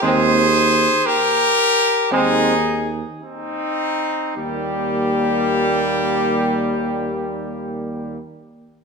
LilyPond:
<<
  \new Staff \with { instrumentName = "Trumpet" } { \time 4/4 \key ees \major \tempo 4 = 53 c''4 bes'4 aes'8 r8 ees'4 | g'1 | }
  \new Staff \with { instrumentName = "Trumpet" } { \time 4/4 \key ees \major aes'4 g'4 ees'8 r8 c'4 | g1 | }
  \new Staff \with { instrumentName = "French horn" } { \time 4/4 \key ees \major c'8 r4. c'8 r4. | bes1 | }
  \new Staff \with { instrumentName = "Trombone" } { \clef bass \time 4/4 \key ees \major aes8 r4. aes8 r4. | g1 | }
  \new Staff \with { instrumentName = "Tuba" } { \clef bass \time 4/4 \key ees \major ees,4 r4 ees,4 r4 | ees,1 | }
>>